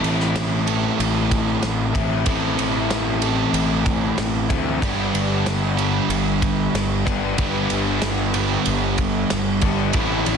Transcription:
0.00 0.88 A1 medium
0.00 0.70 A2 medium
0.00 0.69 E3 medium
0.00 1.93 A3 medium
0.00 0.68 C4 medium
0.00 0.67 E4 medium
0.00 0.67 A4 medium
0.04 ride medium
0.20 snare soft
0.36 snare loud
0.36 ride medium
0.67 2.24 A2 medium
0.67 2.25 E3 medium
0.67 2.25 C4 medium
0.67 2.25 E4 medium
0.67 2.25 A4 medium
0.67 ride medium
0.99 1.56 A1 medium
0.99 ride medium
1.31 kick medium
1.31 ride medium
1.62 1.91 A1 medium
1.62 snare medium
1.62 ride medium
1.94 2.23 A1 medium
1.94 2.25 A2 medium
1.94 2.25 E3 medium
1.94 2.25 A3 medium
1.94 2.25 C4 medium
1.94 2.24 E4 medium
1.94 kick medium
1.94 ride medium
2.26 2.55 A1 medium
2.26 3.20 A2 medium
2.26 3.20 E3 medium
2.26 4.49 A3 medium
2.26 3.21 C4 medium
2.26 3.21 E4 loud
2.26 3.20 A4 medium
2.26 kick loud
2.26 ride medium
2.58 3.44 A1 medium
2.58 ride medium
2.90 snare loud
2.90 ride medium
3.22 4.81 A2 medium
3.22 4.81 E3 medium
3.22 4.80 C4 medium
3.22 4.80 E4 medium
3.22 4.80 A4 medium
3.22 ride medium
3.53 4.11 A1 medium
3.53 ride medium
3.86 kick medium
3.86 ride medium
4.18 4.47 A1 medium
4.18 snare loud
4.18 ride medium
4.49 4.79 D2 medium
4.49 4.80 A2 medium
4.49 4.80 E3 medium
4.49 4.80 A3 medium
4.49 4.80 C4 medium
4.49 4.80 E4 medium
4.49 kick medium
4.49 ride medium
4.82 5.10 G1 medium
4.82 5.80 G2 medium
4.82 5.76 D3 medium
4.82 5.79 G3 medium
4.82 5.78 B3 loud
4.82 5.78 D4 medium
4.82 5.77 G4 loud
4.82 kick loud
4.82 ride medium
5.14 5.99 G1 medium
5.14 ride medium
5.46 snare loud
5.46 ride medium
5.77 7.37 G2 medium
5.77 7.37 D3 medium
5.77 7.39 G3 medium
5.77 7.36 B3 medium
5.77 7.36 D4 medium
5.77 7.40 G4 medium
5.77 ride medium
6.09 6.66 G1 medium
6.09 ride medium
6.42 kick medium
6.42 ride medium
6.74 7.03 G1 medium
6.74 snare loud
6.74 ride medium
7.05 7.35 G1 medium
7.05 7.36 G2 medium
7.05 7.37 D3 medium
7.05 7.38 G3 medium
7.05 7.36 B3 medium
7.05 7.36 D4 medium
7.05 kick medium
7.05 ride medium
7.38 7.67 G1 loud
7.38 8.32 G2 medium
7.38 8.32 D3 medium
7.38 8.36 G3 loud
7.38 8.33 B3 medium
7.38 8.33 D4 medium
7.38 8.34 G4 loud
7.38 kick loud
7.38 ride medium
7.70 8.56 G1 medium
7.70 ride medium
8.02 snare loud
8.02 ride medium
8.34 9.94 G2 medium
8.34 9.92 D3 medium
8.34 9.93 G3 medium
8.34 9.93 B3 medium
8.34 9.92 D4 medium
8.34 9.95 G4 medium
8.34 ride medium
8.66 9.23 G1 medium
8.66 ride medium
8.98 kick medium
8.98 ride medium
9.30 9.59 G1 medium
9.30 snare loud
9.30 ride medium
9.61 9.90 G1 medium
9.61 9.93 G2 medium
9.61 9.93 D3 medium
9.61 9.95 G3 medium
9.61 9.92 B3 medium
9.61 9.92 D4 medium
9.61 kick medium
9.61 ride medium
9.93 10.22 A1 medium
9.93 10.37 A2 medium
9.93 10.37 E3 medium
9.93 10.37 A3 medium
9.93 10.37 C4 medium
9.93 10.37 E4 loud
9.93 kick loud
9.93 ride medium
10.26 10.37 A1 medium
10.26 ride medium

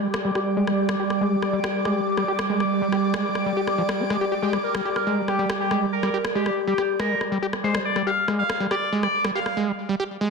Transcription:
0.00 9.57 G3 medium
0.00 0.07 G3 loud
0.00 9.57 G4 medium
0.00 9.57 D5 medium
0.00 9.57 D6 medium
0.14 cross-stick medium
0.25 0.31 G3 medium
0.35 0.40 G4 medium
0.35 cross-stick soft
0.57 0.69 G#3 medium
0.67 0.72 G3 loud
0.67 cross-stick soft
0.89 0.95 G3 medium
0.89 cross-stick medium
1.00 1.04 G4 medium
1.10 cross-stick soft
1.21 1.33 G#3 medium
1.32 1.36 G3 loud
1.42 cross-stick soft
1.53 1.60 G3 medium
1.64 1.68 G4 medium
1.64 cross-stick medium
1.85 1.98 G#3 medium
1.85 cross-stick soft
1.96 2.00 G3 loud
2.17 2.24 G3 medium
2.17 cross-stick soft
2.28 2.32 G4 medium
2.39 cross-stick medium
2.50 2.62 G#3 medium
2.60 2.65 G3 loud
2.60 cross-stick soft
2.82 2.88 G3 medium
2.92 2.97 G4 medium
2.92 cross-stick soft
3.14 3.26 G#3 medium
3.14 cross-stick medium
3.25 3.29 G3 loud
3.35 cross-stick soft
3.46 3.52 G3 medium
3.57 3.61 G4 medium
3.67 cross-stick soft
3.78 3.82 F3 medium
3.89 4.01 G3 medium
3.89 cross-stick medium
4.00 4.04 D4 medium
4.10 4.17 G#3 loud
4.10 cross-stick soft
4.21 4.25 G4 medium
4.32 4.34 G4 medium
4.42 4.55 G#3 medium
4.42 4.55 G4 loud
4.53 4.57 G3 loud
4.53 cross-stick soft
4.64 4.82 A#4 loud
4.75 4.81 G3 medium
4.75 cross-stick medium
4.85 4.90 G4 medium
4.96 5.14 A#4 loud
4.96 cross-stick soft
5.07 5.19 G#3 medium
5.17 5.22 G3 loud
5.28 5.46 G4 medium
5.28 cross-stick soft
5.39 5.45 G3 medium
5.50 5.54 G4 medium
5.50 cross-stick medium
5.60 5.79 G4 loud
5.71 5.83 G#3 medium
5.71 cross-stick soft
5.82 5.86 G3 loud
5.92 6.17 A#4 medium
6.03 6.10 G3 medium
6.03 cross-stick soft
6.14 6.18 G4 medium
6.25 cross-stick medium
6.35 6.47 G#3 medium
6.35 6.53 G4 loud
6.46 6.50 G3 loud
6.46 cross-stick soft
6.67 6.74 G3 medium
6.67 6.86 G4 loud
6.78 6.82 G4 medium
6.78 cross-stick soft
7.00 7.12 G#3 medium
7.00 7.18 A#4 loud
7.00 cross-stick medium
7.10 7.15 G3 loud
7.21 cross-stick soft
7.32 7.38 G3 medium
7.42 7.47 G4 medium
7.53 cross-stick soft
7.64 7.76 G#3 medium
7.64 7.76 C5 medium
7.75 7.79 G3 loud
7.75 cross-stick medium
7.85 7.97 D5 medium
7.96 8.02 G3 medium
7.96 cross-stick soft
8.07 8.11 G4 medium
8.07 8.25 F5 medium
8.28 8.40 G#3 medium
8.28 cross-stick soft
8.39 8.43 G3 loud
8.39 8.57 F5 loud
8.50 cross-stick medium
8.60 8.67 G3 medium
8.71 8.75 G4 medium
8.71 8.89 D5 loud
8.71 cross-stick soft
8.92 9.05 G#3 medium
9.03 9.07 G3 loud
9.03 9.21 D5 medium
9.03 cross-stick soft
9.25 9.31 G3 medium
9.25 cross-stick medium
9.35 9.40 G4 medium
9.35 9.57 F5 medium
9.46 cross-stick soft
9.57 9.69 G#3 medium
9.68 9.72 G3 loud
9.89 9.95 G3 medium
10.00 10.04 G4 medium
10.21 10.30 G#3 medium

